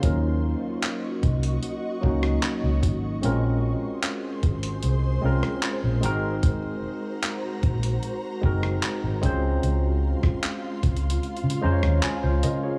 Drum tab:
HH |x-----------x-----x--x--x-----------x-----x-----|x-----------x-----x--x--x-----------x-----x-----|x-----------x-----x--x--x-----------x-----x-----|x-----------x-----x-x-x-x-x-x-------x-----x-----|
CP |------------x-----------------------x-----------|------------x-----------------------x-----------|------------x-----------------------x-----------|------------x-----------------------x-----------|
SD |---------------------------------r--------------|---------------------------------r--------------|---------------------------------r--------------|---------r-----------------------r--------------|
BD |o-----------------o-----------o-----------o-----|------------------o-----------------------------|o-----------------o-----------o-----------o-----|---------o--------o-----------------------------|